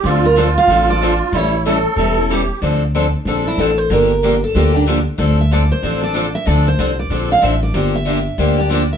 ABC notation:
X:1
M:4/4
L:1/8
Q:"Swing" 1/4=187
K:Dm
V:1 name="Steel-string acoustic guitar"
z B c f2 d2 z | ^c4 z4 | z4 z E A c | B3 A G D z2 |
z e d c2 d2 e | d c2 d2 f e d- | d e3 z d2 e |]
V:2 name="Accordion"
F8 | E2 A4 G2 | z8 | z8 |
z8 | z8 | z8 |]
V:3 name="Steel-string acoustic guitar"
[D,F,CDA] z [D,F,CDA] z [D,F,CDA] [CDA] [D,F,CDA] z | [E,G,^CEA] z [E,G,CEA] z [E,G,CEA] [CEA] [E,G,CEA] z | [D,F,CDA] z [D,F,CDA] z [D,F,CDA] [CDA] [D,F,CDA] z | [D,F,B,DG] z [D,F,B,DG] z [D,F,B,DG] [B,DG] [D,F,B,DG] z |
[D,F,CDA] z [D,F,CDA] z [D,F,CDA] [CDA] [D,F,CDA] z | [D,F,CDA] z [D,F,CDA] z [D,F,CDA] [CDA] [D,F,CDA] z | [D,F,B,DG] z [D,F,B,DG] z [D,F,B,DG] [B,DG] [D,F,B,DG] z |]
V:4 name="Steel-string acoustic guitar"
[D,F,CDA] z [D,F,CDA] z [D,F,CDA] z [D,F,CDA] z | [E,G,^CEA] z [E,G,CEA] z [E,G,CEA] z [E,G,CEA] z | [D,F,CDA] z [D,F,CDA] z [D,F,CDA] z [D,F,CDA] z | [D,F,B,DG] z [D,F,B,DG] z [D,F,B,DG] z [D,F,B,DG] z |
[D,F,CDA] z [D,F,CDA] z [D,F,CDA] z [D,F,CDA] z | [D,F,CDA] z [D,F,CDA] z [D,F,CDA] z [D,F,CDA] z | [D,F,B,DG] z [D,F,B,DG] z [D,F,B,DG] z [D,F,B,DG] z |]
V:5 name="Upright bass" clef=bass
D,,4 A,,,4 | A,,,4 E,,,4 | D,,4 B,,,2 A,,,2 | G,,,4 D,,4 |
D,,4 A,,,4 | D,,2 C,,2 B,,,2 A,,,2 | G,,,4 D,,4 |]